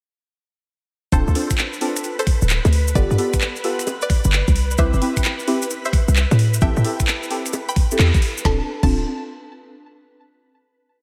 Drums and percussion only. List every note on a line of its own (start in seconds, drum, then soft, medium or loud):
1.12 kick loud
1.12 closed hi-hat medium
1.12 maracas medium
1.28 maracas soft
1.35 open hi-hat loud
1.50 finger snap medium
1.50 kick medium
1.50 closed hi-hat medium
1.50 maracas medium
1.58 clap loud
1.58 maracas medium
1.73 maracas soft
1.81 open hi-hat loud
1.96 finger snap soft
1.96 closed hi-hat medium
1.96 maracas medium
2.04 closed hi-hat medium
2.04 maracas medium
2.19 closed hi-hat medium
2.19 maracas soft
2.27 finger snap medium
2.27 kick loud
2.27 open hi-hat loud
2.42 maracas medium
2.50 clap loud
2.50 maracas medium
2.65 closed hi-hat medium
2.65 high bongo medium
2.65 maracas soft
2.73 open hi-hat loud
2.88 closed hi-hat soft
2.88 maracas medium
2.95 kick loud
2.95 closed hi-hat medium
2.95 maracas medium
3.11 maracas soft
3.18 open hi-hat loud
3.33 finger snap medium
3.33 kick medium
3.33 closed hi-hat medium
3.33 maracas medium
3.41 clap loud
3.41 maracas medium
3.56 maracas soft
3.64 open hi-hat medium
3.79 finger snap soft
3.79 closed hi-hat medium
3.79 maracas medium
3.87 closed hi-hat medium
3.87 high bongo medium
3.87 maracas medium
4.01 closed hi-hat medium
4.01 maracas soft
4.10 finger snap medium
4.10 kick loud
4.10 open hi-hat loud
4.24 maracas medium
4.33 clap loud
4.33 maracas medium
4.48 kick loud
4.48 closed hi-hat soft
4.48 maracas soft
4.56 open hi-hat loud
4.71 closed hi-hat soft
4.71 maracas medium
4.78 kick loud
4.78 closed hi-hat medium
4.78 maracas medium
4.93 maracas soft
5.02 open hi-hat loud
5.17 finger snap medium
5.17 kick medium
5.17 closed hi-hat medium
5.17 maracas medium
5.24 clap loud
5.24 maracas medium
5.39 maracas soft
5.48 open hi-hat medium
5.62 finger snap soft
5.62 closed hi-hat medium
5.62 maracas medium
5.70 closed hi-hat medium
5.70 maracas medium
5.85 closed hi-hat medium
5.85 maracas soft
5.93 finger snap medium
5.93 kick loud
5.93 open hi-hat loud
6.08 maracas medium
6.16 clap loud
6.16 maracas medium
6.31 closed hi-hat soft
6.31 high bongo medium
6.31 maracas soft
6.39 open hi-hat medium
6.54 closed hi-hat soft
6.54 maracas medium
6.61 kick loud
6.61 closed hi-hat medium
6.61 maracas medium
6.76 maracas soft
6.85 open hi-hat loud
7.00 finger snap medium
7.00 kick medium
7.00 closed hi-hat medium
7.00 maracas medium
7.08 clap loud
7.08 maracas medium
7.23 maracas soft
7.31 open hi-hat medium
7.46 finger snap soft
7.46 closed hi-hat medium
7.46 maracas medium
7.53 closed hi-hat medium
7.53 high bongo medium
7.53 maracas medium
7.69 closed hi-hat medium
7.69 maracas soft
7.76 finger snap soft
7.76 kick loud
7.76 open hi-hat loud
7.91 maracas medium
7.99 clap loud
7.99 maracas medium
8.14 kick loud
8.14 closed hi-hat soft
8.14 maracas soft
8.22 open hi-hat medium
8.37 closed hi-hat soft
8.37 maracas medium
8.45 kick loud
8.45 snare medium
8.83 kick loud
8.83 crash medium